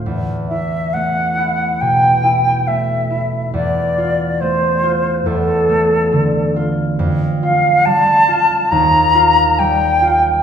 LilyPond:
<<
  \new Staff \with { instrumentName = "Flute" } { \time 4/4 \key d \minor \tempo 4 = 69 r8 e''8 fis''4 g''4 e''4 | d''4 c''4 a'4. r8 | r8 f''8 a''4 bes''4 g''4 | }
  \new Staff \with { instrumentName = "Harp" } { \time 4/4 \key d \minor <e, a>8 e'8 a8 e'8 b,8 e'8 a8 e'8 | e,8 f'8 a8 f'8 e,8 a8 d8 f'8 | f,8 f'8 g8 f'8 ees,8 f'8 g8 f'8 | }
>>